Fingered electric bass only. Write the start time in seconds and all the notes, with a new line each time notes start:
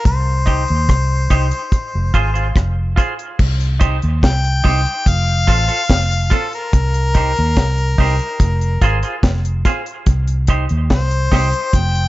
0.06 C2
0.70 D#2
0.90 C2
1.31 C2
1.95 F1
2.15 G#1
2.56 F1
3.40 C2
4.03 D#2
4.24 C2
4.65 C2
5.07 F1
5.48 A1
5.90 F1
6.74 C2
7.39 D#2
7.57 C2
7.99 C2
8.40 F1
8.82 G#1
9.24 F1
10.07 C2
10.71 D#2
10.91 C2
11.32 C2
11.74 F1